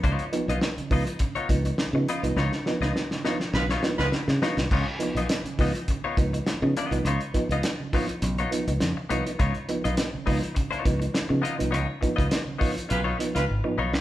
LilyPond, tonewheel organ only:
\new Staff \with { instrumentName = "Tonewheel organ" } { \time 4/4 \key des \mixolydian \tempo 4 = 103 des16 r16 <f ces' ees'>16 <ces' ees'>16 <ces' ees'>16 des16 <f ces' ees'>16 r16 des16 r16 <f ces' ees'>16 <ces' ees'>16 r16 <f ces' ees'>16 des16 <f ces' ees'>16 | des16 r16 <f ces' ees'>16 <ces' ees'>16 <ces' ees'>16 des16 <f ces' ees'>16 r16 des16 r16 <f ces' ees'>16 <ces' ees'>16 des16 r16 <f ces' ees'>16 <ces' ees'>16 | des16 r16 <f ces' ees'>16 <ces' ees'>16 <ces' ees'>16 des16 <f ces' ees'>16 r16 des16 r16 <f ces' ees'>16 <ces' ees'>16 r16 <f ces' ees'>16 des16 <f ces' ees'>16 | des16 r16 <f ces' ees'>16 <ces' ees'>16 <ces' ees'>16 des16 <f ces' ees'>16 r16 des16 r16 <f ces' ees'>16 <ces' ees'>16 des16 r16 <f ces' ees'>16 <ces' ees'>16 |
des16 r16 <f ces' ees'>16 <ces' ees'>16 <ces' ees'>16 des16 <f ces' ees'>16 r16 des16 r16 <f ces' ees'>16 <ces' ees'>16 r16 <f ces' ees'>16 des16 <f ces' ees'>16 | des16 r16 <f ces' ees'>16 <ces' ees'>16 <ces' ees'>16 des16 <f ces' ees'>16 r16 des16 r16 <f ces' ees'>16 <ces' ees'>16 r16 <f ces' ees'>16 r16 des16 | }